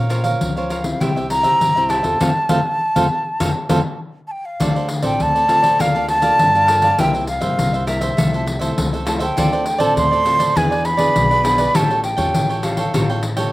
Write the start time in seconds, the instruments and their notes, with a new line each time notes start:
Already playing: upright bass A#2, nylon-string guitar A#3, cavaquinho F5
0.09 nylon-string guitar C#4 F4 C5, cavaquinho F4 A#4 C#5 F5, pandeiro
0.24 cavaquinho A#4 C#5 F5, pandeiro
0.41 upright bass C#2, nylon-string guitar F3, pandeiro
0.56 nylon-string guitar C#4 F4 C5, cavaquinho A#4 C#5 F5, pandeiro
0.69 cavaquinho F4 A#4 C#5 F5, flute F5, pandeiro
0.84 nylon-string guitar G3 C4 E4, muted cavaquinho stroke, pandeiro
1.00 upright bass C2, nylon-string guitar C3, cavaquinho E4 G4 C5 E5, flute G5, pandeiro
1.16 cavaquinho G4 C5 E5, pandeiro
1.30 nylon-string guitar G3 C4 E4, flute A#5, muted cavaquinho stroke, pandeiro
1.43 upright bass C3, cavaquinho G4 C5 E5, pandeiro
1.61 upright bass C2, nylon-string guitar G2, pandeiro
1.76 nylon-string guitar G3 C4 E4, cavaquinho G4 C5 E5, pandeiro
1.89 cavaquinho E4 G4 C5 E5, flute A5, pandeiro
2.03 upright bass E2, nylon-string guitar C4 F4 A4, cavaquinho G4 C5 E5, pandeiro
2.20 upright bass F2, nylon-string guitar A3 C4 F4, cavaquinho A4 C5 F5, pandeiro
2.49 upright bass F2, nylon-string guitar A3 C4 F4, cavaquinho A4 C5 F5, pandeiro
2.96 upright bass F2, nylon-string guitar A3 C4 F4, cavaquinho A4 C5 F5, pandeiro
3.40 upright bass F2, nylon-string guitar A3 C4 F4, cavaquinho A4 C5 F5, pandeiro
3.69 upright bass F2, nylon-string guitar A3 C4 F4, cavaquinho A4 C5 F5, pandeiro
4.27 flute A5
4.31 flute G5
4.45 flute F5
4.60 upright bass D2, nylon-string guitar D3, cavaquinho F4 A4 C5 D5, pandeiro
4.75 cavaquinho A4 C5 D5, pandeiro
4.89 muted cavaquinho stroke, pandeiro
5.02 upright bass A1, nylon-string guitar C4 F4 A4, cavaquinho A4 C5 D5, flute G5, pandeiro
5.20 upright bass D2, nylon-string guitar A2, flute A5, pandeiro
5.35 cavaquinho A4 C5 D5, pandeiro
5.48 nylon-string guitar C4 F4 A4, cavaquinho F4 A4 C5 D5, pandeiro
5.62 cavaquinho A4 C5 D5, pandeiro
5.79 upright bass D2, nylon-string guitar D3 A#3 F4 A4, cavaquinho A#4 D5 F5 A5, flute F5, pandeiro
5.95 cavaquinho D5 F5 A5, pandeiro
6.08 flute A5, muted cavaquinho stroke, pandeiro
6.22 nylon-string guitar A#3 F4 A4, cavaquinho D5 F5 A5, pandeiro
6.39 upright bass G2, nylon-string guitar D3, pandeiro
6.55 cavaquinho D5 F5 A5, pandeiro
6.67 nylon-string guitar A#3 F4 A4, cavaquinho A#4 D5 F5 A5, pandeiro
6.82 cavaquinho D5 F5 A5, pandeiro
6.98 upright bass C2, nylon-string guitar C3 G3 A#3 E4, cavaquinho A#4 C5 E5, flute G5, pandeiro
7.15 cavaquinho C5, pandeiro
7.27 flute F5, muted cavaquinho stroke, pandeiro
7.41 upright bass G2, nylon-string guitar G3 A#3, cavaquinho C5 E5, pandeiro
7.58 upright bass C2, nylon-string guitar G2, pandeiro
7.73 cavaquinho C5 E5, pandeiro
7.87 nylon-string guitar G3 A#3 E4, cavaquinho A#4 C5 E5, flute E5, pandeiro
8.01 cavaquinho C5 E5, pandeiro
8.17 upright bass C2, nylon-string guitar C3 F3 A3 E4, cavaquinho F4 A4 C5 E5, pandeiro
8.33 cavaquinho A4 C5 E5, pandeiro
8.46 muted cavaquinho stroke, pandeiro
8.59 nylon-string guitar F3 A3 E4, cavaquinho A4 C5 E5, pandeiro
8.78 upright bass C#2, nylon-string guitar C3, pandeiro
8.93 cavaquinho A4 C5 E5, pandeiro
9.05 nylon-string guitar F3 A3 E4, cavaquinho F4 A4 C5 E5, flute A5, pandeiro
9.19 cavaquinho A4 C5 E5, flute G5, pandeiro
9.37 upright bass D2, nylon-string guitar D3 C4 F4 A4, cavaquinho F4 A4 C5 D5, pandeiro
9.52 cavaquinho A4 C5 D5, pandeiro
9.66 muted cavaquinho stroke, pandeiro
9.78 upright bass A1, nylon-string guitar C4 F4 A4, cavaquinho A4 C5 D5, flute A5, pandeiro
9.96 upright bass D2, nylon-string guitar A2, flute C6, pandeiro
10.11 cavaquinho A4 C5 D5, pandeiro
10.25 nylon-string guitar C4 F4 A4, cavaquinho F4 A4 C5 D5, pandeiro
10.39 cavaquinho A4 C5 D5, pandeiro
10.55 upright bass E2, nylon-string guitar E3 B3 D4 G#4, cavaquinho E4 G#4 B4 D5, flute G#5, pandeiro
10.71 cavaquinho G#4 B4 D5, pandeiro
10.85 flute B5, muted cavaquinho stroke, pandeiro
10.97 nylon-string guitar B3 D4 G#4, cavaquinho G#4 B4 D5, pandeiro
11.16 upright bass B1, nylon-string guitar B2, pandeiro
11.30 cavaquinho G#4 B4 D5, pandeiro
11.43 nylon-string guitar B3 D4 G#4, cavaquinho E4 G#4 B4 D5, pandeiro
11.58 cavaquinho G#4 B4 D5, pandeiro
11.74 upright bass A1, nylon-string guitar A2 G3 C#4 F4, cavaquinho G4 A4 C#5 G5, flute A5, pandeiro
11.90 cavaquinho A4 C#5 G5, pandeiro
12.03 flute G5, muted cavaquinho stroke, pandeiro
12.17 upright bass E2, nylon-string guitar G3 C#4 F4, cavaquinho A4 C#5 G5, pandeiro
12.34 upright bass A1, nylon-string guitar E3, pandeiro
12.49 cavaquinho A4 C#5 G5, pandeiro
12.63 nylon-string guitar G3 C#4 F4, cavaquinho G4 A4 C#5 G5, flute F5, pandeiro
12.77 cavaquinho A4 C#5 G5, pandeiro
12.94 upright bass A1, nylon-string guitar A2 G3 C#4 F4, cavaquinho G4 A4 C#5 G5, pandeiro
13.09 cavaquinho A4 C#5 G5, pandeiro
13.23 muted cavaquinho stroke, pandeiro
13.37 nylon-string guitar G3 C#4 F4, cavaquinho A4 C#5 G5, pandeiro